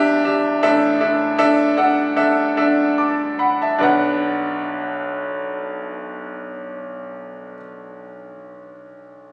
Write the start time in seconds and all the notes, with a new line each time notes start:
Already playing: E2 E3 D4 G4 E5 G5
0.24 D4 G4 E5
0.63 A1 A2 D4 A4 E5
1.00 D4 A4 E5
1.38 D4 A4 E5
1.77 D4 A4 F#5
2.16 D4 A4 E5
2.57 D4 A4 E5
2.98 A5 D6
3.39 F#5 B5
3.62 E5 A5
3.78 B1 D4 B4
3.83 F#5